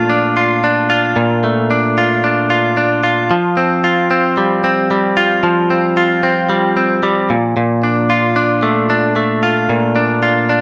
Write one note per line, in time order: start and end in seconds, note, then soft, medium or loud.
0.00 1.15 A#2 medium
0.00 0.38 F3 medium
0.00 1.42 A3 medium
0.00 0.36 F4 medium
0.10 0.62 D4 medium
0.37 0.89 F4 medium
0.64 1.69 D4 medium
0.90 1.97 F4 medium
1.16 3.30 A#2 medium
1.44 3.36 A3 medium
1.71 2.23 D4 medium
1.98 2.50 F4 medium
2.24 2.76 D4 medium
2.50 3.03 F4 medium
2.77 3.36 D4 medium
3.03 3.84 F4 medium
3.31 5.43 F3 medium
3.57 4.09 C4 medium
3.84 5.16 F4 medium
4.11 4.63 C4 medium
4.37 4.90 G3 medium
4.64 5.69 C4 medium
4.91 6.48 G3 medium
5.17 5.97 F4 medium
5.43 8.93 F3 medium
5.70 6.22 C4 medium
5.97 8.09 F4 medium
6.23 6.75 C4 medium
6.49 7.02 G3 medium
6.77 7.35 C4 medium
7.03 7.35 G3 medium
7.30 7.55 A#2 medium
7.57 9.68 A#2 medium
7.83 8.35 D4 medium
8.10 9.42 F4 medium
8.36 8.89 D4 medium
8.63 9.15 A3 medium
8.90 9.94 D4 medium
9.16 10.61 A3 medium
9.43 10.22 F4 medium
9.69 10.61 A#2 medium
9.96 10.48 D4 medium
10.23 10.61 F4 medium
10.49 10.61 D4 medium